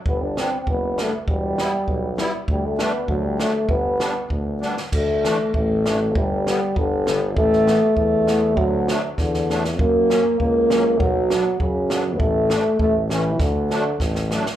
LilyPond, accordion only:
\new Staff \with { instrumentName = "Accordion" } { \time 2/4 \key g \major \tempo 4 = 99 r8 <g b d'>8 r8 <g b d'>8 | r8 <g b e'>8 r8 <g b e'>8 | r8 <g a d'>8 r8 <fis a d'>8 | r8 <g b d'>8 r8 <g b d'>8 |
\key d \major r8 <e a d'>8 r8 <e a d'>8 | r8 <d g b>8 r8 <d g b>8 | r8 <e a b>8 r8 <e a b>8 | r8 <fis a d'>8 r8 <fis a d'>8 |
r8 <fis ais cis'>8 r8 <fis ais cis'>8 | r8 <fis b d'>8 r8 <fis b d'>8 | r8 <e a d'>8 r8 <e a cis'>8 | r8 <fis a d'>8 r8 <fis a d'>8 | }